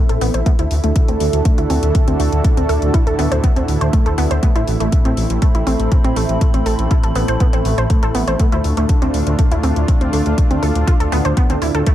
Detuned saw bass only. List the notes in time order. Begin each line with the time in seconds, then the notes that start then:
0.09 A1
0.21 A1
0.34 A1
0.59 D2
0.71 D2
0.84 D2
1.08 D2
1.20 D2
1.33 D2
1.58 D2
1.70 D2
1.83 D2
2.07 D2
2.19 D2
2.32 D2
2.57 D2
2.69 D2
2.82 D2
3.07 D2
3.19 D2
3.32 D2
3.56 D2
3.68 D2
3.81 D2
4.06 D2
4.18 D2
4.31 D2
4.56 A1
4.68 A1
4.80 A1
5.05 A1
5.17 A1
5.30 A1
5.55 A1
5.67 A1
5.80 A1
6.04 A1
6.16 A1
6.29 A1
6.54 A1
6.66 A1
6.79 A1
7.04 A1
7.16 A1
7.28 A1
7.53 A1
7.65 A1
7.78 A1
8.03 A1
8.15 A1
8.27 A1
8.52 D2
8.64 D2
8.77 D2
9.02 D2
9.14 D2
9.27 D2
9.52 D2
9.63 D2
9.76 D2
10.01 D2
10.13 D2
10.26 D2
10.51 D2
10.63 D2
10.75 D2
11.00 D2
11.12 D2
11.25 D2
11.50 D2
11.62 D2
11.75 D2